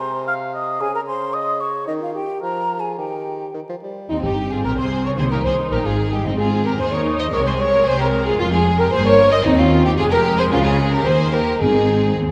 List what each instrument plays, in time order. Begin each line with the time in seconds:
Already playing: bassoon C3
0.00 clarinet C5, flute C6
0.27 clarinet F5, flute F6
0.54 clarinet D#5, flute D#6
0.80 bassoon C#3, clarinet G#4, flute G#5
0.94 clarinet A#4, flute A#5
1.07 clarinet C5, flute C6
1.33 clarinet D#5, flute D#6
1.60 clarinet C#5, flute C#6
1.87 bassoon D#3, clarinet D#4, flute D#5
2.00 clarinet F4, flute F5
2.14 clarinet G4, flute G5
2.41 bassoon F3, clarinet A#4, flute A#5
2.79 clarinet G#4, flute G#5
2.98 bassoon D#3, clarinet G4, flute G5
3.54 bassoon D#3
3.69 bassoon F3
3.83 bassoon G3
4.09 double bass section D#2, cello section D#2, viola section C4, violin section C4 D#4, french horn section D#4, clarinet D#4, flute D#5
4.23 double bass section G1, cello section G2, violin section D#4 G4, french horn section G4, clarinet G4, flute G5
4.51 cello section G#2, violin section F4 G#4, clarinet G#4, french horn section G#4, flute G#5
4.63 double bass section A#1, cello section A#2, violin section G4 A#4, french horn section A#4, clarinet A#4, flute A#5
4.77 double bass section C2, cello section C3, violin section G#4 C5, french horn section C5, clarinet C5, flute C6
5.05 cello section C#3, violin section A#4 C#5, clarinet C#5, french horn section C#5, flute C#6
5.17 double bass section C2, cello section C3, timpani D#3, viola section D#4, violin section G#4 C5, french horn section C5, clarinet C5, flute C6
5.31 cello section A#2, violin section G4 A#4, french horn section A#4, clarinet A#4, flute A#5
5.43 double bass section C2, cello section C3, violin section G#4 C5, french horn section C5, clarinet C5, flute C6
5.70 double bass section A#1, cello section A#2, violin section G4 A#4, french horn section A#4, clarinet A#4, flute A#5
5.84 double bass section G#1, cello section G#2, violin section F4 G#4, french horn section G#4, clarinet G#4, flute G#5
6.12 cello section G2, violin section D#4 G4, french horn section G4, clarinet G4, flute G5
6.24 double bass section G#1, timpani G#2, cello section G#2, violin section C4 D#4, viola section C4, french horn section D#4, clarinet D#4, flute D#5
6.38 violin section F4 G#4, french horn section G#4, clarinet G#4, flute G#5
6.64 violin section G4 A#4, french horn section A#4, clarinet A#4, flute A#5
6.79 double bass section D#2, cello section D#2, viola section D#4, violin section G#4 C5, french horn section C5, clarinet C5, flute C6
6.92 violin section A#4 C#5, french horn section C#5, clarinet C#5, flute C#6
7.19 violin section C5 D#5, french horn section D#5, clarinet D#5, flute D#6
7.32 double bass section C2, cello section C3, viola section G#3, violin section A#4 C#5, french horn section C#5, clarinet C#5, flute C#6
7.46 violin section G#4 C5, clarinet C5, french horn section C5, flute C6
7.60 violin section A#4 C#5, clarinet C#5, french horn section C#5, flute C#6
7.85 double bass section C2, cello section C3, violin section G#4 C5, french horn section C5, clarinet C5, flute C6
7.98 violin section G4 A#4, clarinet A#4, french horn section A#4, flute A#5
8.25 violin section F4 G#4, clarinet G#4, french horn section G#4, flute G#5
8.38 double bass section F1, cello section F2, violin section C#4 F4, french horn section F4, clarinet F4, flute F5
8.52 violin section F4 G#4, clarinet G#4, french horn section G#4, flute G#5
8.78 violin section G4 A#4, french horn section A#4, clarinet A#4, flute A#5
8.92 double bass section G1, cello section G2, viola section A#3, violin section G#4 C5, french horn section C5, clarinet C5, flute C6
9.05 violin section A#4 C#5, french horn section C#5, clarinet C#5, flute C#6
9.31 violin section C5 D#5, clarinet D#5, french horn section D#5, flute D#6
9.44 double bass section D#2, cello section D#2, timpani D#3, violin section C4 D#4, viola section C4, french horn section D#4, clarinet D#4, flute D#5
9.58 violin section C#4 F4, clarinet F4, french horn section F4, flute F5
9.85 violin section D#4 G4, clarinet G4, french horn section G4, flute G5
9.97 double bass section F1, cello section F2, viola section G#3, violin section F4 G#4, french horn section G#4, clarinet G#4, flute G#5
10.11 violin section G4 A#4, french horn section A#4, clarinet A#4, flute A#5
10.38 violin section G#4 C5, clarinet C5, french horn section C5, flute C6
10.51 double bass section C#2, cello section C#3, violin section C#4 F4, clarinet F4, french horn section F4, flute F5
10.65 violin section F4 G#4, clarinet G#4, french horn section G#4, flute G#5
10.92 violin section G4 A#4, clarinet A#4, french horn section A#4, flute A#5
11.05 double bass section D#2, cello section D#3, viola section A#3, violin section G#4 C5, clarinet C5, french horn section C5, flute C6
11.32 violin section G4 A#4, clarinet A#4, french horn section A#4, flute A#5
11.60 double bass section G#1, cello section G#2, timpani G#2, viola section C4, violin section D#4 G#4, clarinet G#4, french horn section G#4, flute G#5
12.16 double bass section D#2, cello section D#2